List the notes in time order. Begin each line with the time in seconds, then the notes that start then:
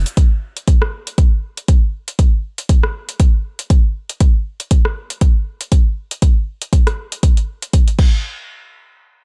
0.06 closed hi-hat, cabasa
0.17 kick, closed hi-hat
0.57 closed hi-hat
0.68 kick, closed hi-hat
0.82 cross-stick
1.07 closed hi-hat
1.18 kick, closed hi-hat
1.57 closed hi-hat
1.68 kick, closed hi-hat
2.08 closed hi-hat
2.19 kick, closed hi-hat
2.58 closed hi-hat
2.69 kick, closed hi-hat
2.83 cross-stick
3.09 closed hi-hat
3.20 kick, closed hi-hat
3.59 closed hi-hat
3.70 kick, closed hi-hat
4.09 closed hi-hat
4.20 kick, closed hi-hat
4.60 closed hi-hat
4.71 kick, closed hi-hat
4.85 cross-stick
5.10 closed hi-hat
5.21 kick, closed hi-hat
5.61 closed hi-hat
5.72 kick, closed hi-hat
6.11 closed hi-hat
6.22 kick, closed hi-hat
6.62 closed hi-hat
6.73 kick, closed hi-hat
6.87 cross-stick, closed hi-hat
7.12 closed hi-hat
7.23 kick, closed hi-hat
7.37 closed hi-hat
7.62 closed hi-hat
7.73 kick, closed hi-hat
7.88 closed hi-hat
7.99 kick, crash